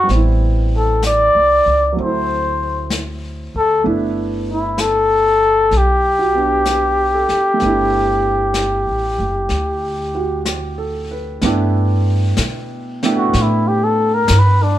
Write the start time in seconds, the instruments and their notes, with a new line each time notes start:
0.03 grand piano G3 B3
0.09 upright bass A1, grand piano C4, brush sweep, snare
0.15 grand piano E4
0.77 muted trumpet A4
1.03 muted trumpet D5, brush sweep, snare, hi-hat pedal
1.35 upright bass C2
1.66 upright bass C#2
1.92 grand piano F#3
1.96 upright bass D2, grand piano A3 C4, brush sweep
2.02 grand piano E4, muted trumpet C5
2.90 brush sweep, snare, hi-hat pedal
3.55 upright bass D2, muted trumpet A4
3.84 upright bass G1, grand piano A3 B3 D4 E4, brush sweep
4.51 muted trumpet E4
4.78 muted trumpet A4, brush sweep, snare, hi-hat pedal
5.71 upright bass B1, brush sweep, snare
5.77 muted trumpet G4
6.19 grand piano F#4
6.35 grand piano B3 D4
6.65 grand piano G4, brush sweep, snare, hi-hat pedal
7.14 grand piano A4
7.29 muted upright bass stroke, snare
7.54 grand piano A3
7.59 upright bass G1, grand piano B3 D4, brush sweep, snare
7.66 grand piano E4
8.54 brush sweep, snare, hi-hat pedal
8.87 upright bass A1
9.19 upright bass F#1
9.49 upright bass D2, brush sweep, snare
10.15 grand piano F#4
10.46 grand piano G4, brush sweep, snare, hi-hat pedal
10.78 grand piano A4
11.11 grand piano B4
11.42 upright bass G2, grand piano A3 B3 D4 E4 G4, brush sweep, snare
12.37 upright bass B2, snare, hi-hat pedal
13.03 grand piano A3 B3 D4 E4 G4, snare
13.16 muted trumpet F#4
13.33 upright bass A2, brush sweep, snare
13.42 muted trumpet E4
13.68 muted trumpet G4
13.84 muted trumpet A4
14.14 muted trumpet A#4
14.28 upright bass G2, snare, hi-hat pedal
14.39 muted trumpet B4
14.63 muted trumpet D4